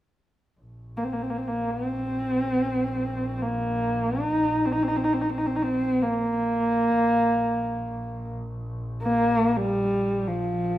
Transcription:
0.60 A#1
0.97 A#3
1.04 C4
1.13 A#3
1.22 C4
1.30 A#3
1.37 C4
1.47 A#3
1.70 C4
3.37 C4
3.42 A#3
4.21 D#4
4.65 C4
4.72 D#4
4.83 C4
4.88 D#4
4.96 C4
5.04 D#4
5.13 C4
5.21 D#4
5.30 C4
5.38 D#4
5.46 C4
5.56 D#4
5.63 C4
6.02 A#3
6.97 A#1
9.03 A#3
9.48 A#3
9.56 G3
10.27 F3

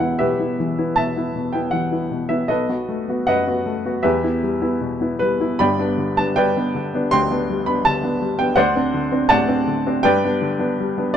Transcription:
Already playing: E3 B4 E5 G5
0.00 B3 E4 F#5
0.19 B2 G4 B4 E5
0.39 B3 E4
0.60 E3
0.79 B3 E4
0.96 B2 E5 A5
1.17 B3 E4
1.36 B2
1.53 B3 E4 G5
1.71 E3 F#5
1.92 B3 E4
2.11 B2
2.29 B3 E4 E5
2.48 B1 A4 B4 D#5
2.69 B3 F#4
2.89 A3
3.08 B3 F#4
3.27 F#2 B4 D#5 F#5
3.47 B3 F#4
3.66 A3
3.85 B3 F#4
4.03 E2 G4 B4 E5
4.24 B3 E4
4.43 G3
4.62 B3 E4
4.81 B2
5.01 B3 E4
5.19 G3 B4
5.40 B3 E4
5.59 G1 G2 D5 G5 B5
5.79 B3 D4
5.98 D3
6.17 B3 D4 A5
6.36 G3 B4 D5 G5
6.57 B3 D4
6.75 D3
6.95 B3 D4
7.11 D2 G5 C6
7.31 B3 D4
7.49 G3
7.66 B3 D4 B5
7.85 D3 A5
8.03 B3 D4
8.21 G3
8.39 B3 D4 G5
8.56 D2 C5 D5 F#5
8.76 C4 D4
8.94 D3
9.12 C4 D4
9.29 A2 D5 F#5 A5
9.48 C4 D4
9.67 D3
9.87 C4 D4
10.03 G2 B4 D5 G5
10.24 B3 D4
10.42 D3
10.59 B3 D4
10.80 G3
10.98 B3 D4
11.14 D5

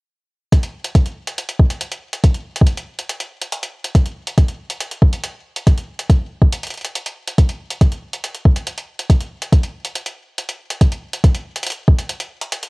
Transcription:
0.52 kick, closed hi-hat
0.63 closed hi-hat
0.85 closed hi-hat
0.95 kick, closed hi-hat
1.06 closed hi-hat
1.27 closed hi-hat
1.38 closed hi-hat
1.49 closed hi-hat
1.59 kick
1.70 closed hi-hat
1.81 closed hi-hat
1.92 closed hi-hat
2.13 closed hi-hat
2.24 kick, closed hi-hat
2.34 closed hi-hat
2.56 closed hi-hat
2.61 kick
2.67 closed hi-hat
2.77 closed hi-hat
2.99 closed hi-hat
3.09 closed hi-hat
3.20 closed hi-hat
3.42 closed hi-hat
3.52 closed hi-hat
3.63 closed hi-hat
3.85 closed hi-hat
3.95 kick, closed hi-hat
4.06 closed hi-hat
4.27 closed hi-hat
4.38 kick, closed hi-hat
4.49 closed hi-hat
4.70 closed hi-hat
4.81 closed hi-hat
4.92 closed hi-hat
5.02 kick
5.13 closed hi-hat
5.24 closed hi-hat
5.56 closed hi-hat
5.67 kick, closed hi-hat
5.77 closed hi-hat
5.99 closed hi-hat
6.09 kick, closed hi-hat
6.42 kick
6.52 closed hi-hat
6.63 closed hi-hat
6.67 closed hi-hat
6.70 closed hi-hat
6.74 closed hi-hat
6.77 closed hi-hat
6.81 closed hi-hat
6.84 closed hi-hat
6.95 closed hi-hat
7.06 closed hi-hat
7.27 closed hi-hat
7.38 kick, closed hi-hat
7.49 closed hi-hat
7.70 closed hi-hat
7.81 kick, closed hi-hat
7.92 closed hi-hat
8.13 closed hi-hat
8.24 closed hi-hat
8.35 closed hi-hat
8.45 kick
8.56 closed hi-hat
8.67 closed hi-hat
8.77 closed hi-hat
8.99 closed hi-hat
9.09 kick, closed hi-hat
9.20 closed hi-hat
9.42 closed hi-hat
9.52 kick, closed hi-hat
9.63 closed hi-hat
9.85 closed hi-hat
9.95 closed hi-hat
10.06 closed hi-hat
10.38 closed hi-hat
10.49 closed hi-hat
10.70 closed hi-hat
10.81 kick, closed hi-hat
10.92 closed hi-hat
11.13 closed hi-hat
11.24 kick, closed hi-hat
11.34 closed hi-hat
11.56 closed hi-hat
11.63 closed hi-hat
11.67 closed hi-hat
11.70 closed hi-hat
11.72 closed hi-hat
11.88 kick
11.99 closed hi-hat
12.09 closed hi-hat
12.20 closed hi-hat
12.42 closed hi-hat
12.52 closed hi-hat
12.63 closed hi-hat

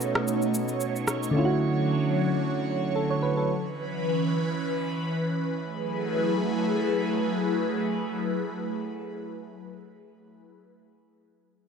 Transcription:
Already playing: B2 A3 C#4 D#4 F#4 B4 C#5
0.01 shaker
0.15 cross-stick
0.28 shaker
0.42 shaker
0.54 shaker
0.68 shaker
0.81 shaker
0.96 shaker
1.08 cross-stick, shaker
1.23 shaker
1.31 D3 F#3 A3 C#4
1.37 E4 F4
1.45 F#4
2.96 A4
3.10 C#5
3.23 B4
3.37 A4
3.49 E3 C#4 B4
5.63 F#3 A3 E4 G#4 B4

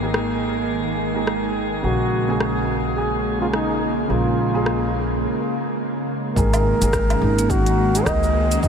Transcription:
Already playing: G#1 D#3 G#3 A#3 G#4 G#5
0.02 D#3 A#3 G#4
0.14 cross-stick
1.14 D#3 A#3 G#4
1.27 cross-stick
1.82 A#1 C#3 A#3 F#4 G#4
2.28 C#3 A#3 G#4
2.41 cross-stick
2.96 G#4
3.41 C#3 A#3 F4 G#4
3.53 D#4, cross-stick
4.08 A#1 C#3 A#3 F4 G#4
4.53 C#3 A#3 G#4
4.66 cross-stick
6.36 G#1 D#3 G#3 A#3 G#4 A#4, kick, shaker
6.54 closed hi-hat, low woodblock, shaker
6.81 G#1 D#3 A#3 G#4, closed hi-hat, shaker
6.93 kick, cross-stick, shaker
7.10 C#4, closed hi-hat, low woodblock, shaker
7.22 G#1 D#4
7.38 A#3, closed hi-hat, shaker
7.50 D#3 F#4, kick, shaker
7.66 G#3, closed hi-hat, shaker
7.78 G#3
7.94 D#3 A#3 G#4, closed hi-hat, shaker
8.06 C#2 D#5, kick, cross-stick, shaker
8.23 shaker
8.52 C#4, closed hi-hat, shaker
8.62 G#1 D#3 A#3 D#4 G#4 D#5, kick, shaker

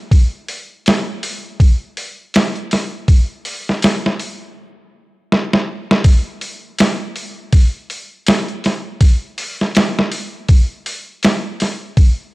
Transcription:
0.11 kick, open hi-hat
0.48 open hi-hat
0.86 snare, open hi-hat
1.23 open hi-hat
1.60 kick, open hi-hat
1.97 open hi-hat
2.34 snare, open hi-hat
2.56 closed hi-hat
2.71 snare, open hi-hat
3.08 kick, open hi-hat
3.45 open hi-hat
3.69 snare
3.82 snare, open hi-hat
4.06 snare
4.20 open hi-hat
5.32 snare
5.53 snare
5.91 snare
6.04 kick, open hi-hat
6.41 open hi-hat
6.79 snare, open hi-hat
7.16 open hi-hat
7.52 kick, open hi-hat
7.90 open hi-hat
8.27 snare, open hi-hat
8.48 closed hi-hat
8.64 snare, open hi-hat
9.01 kick, open hi-hat
9.38 open hi-hat
9.61 snare
9.75 snare, open hi-hat
9.99 snare
10.12 open hi-hat
10.48 kick, open hi-hat
10.86 open hi-hat
11.23 snare, open hi-hat
11.60 snare, open hi-hat
11.97 kick, open hi-hat

